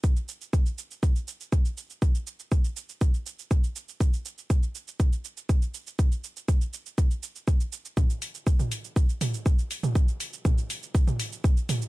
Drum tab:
HH |----------------|----------------|----------------|----------------|
SH |xxxxxxxxxxxxxxxx|xxxxxxxxxxxxxxxx|xxxxxxxxxxxxxxxx|xxxxxxxxxxxxxxxx|
T2 |----------------|----------------|----------------|----------------|
BD |o---o---o---o---|o---o---o---o---|o---o---o---o---|o---o---o---o---|

HH |--o---o---o---o-|--o---o---o---o-|
SH |xxxxxxxxxxxxxxxx|xxxxxxxxxxxxxxxx|
T2 |o----o----o----o|----o----o----o-|
BD |o---o---o---o---|o---o---o---o---|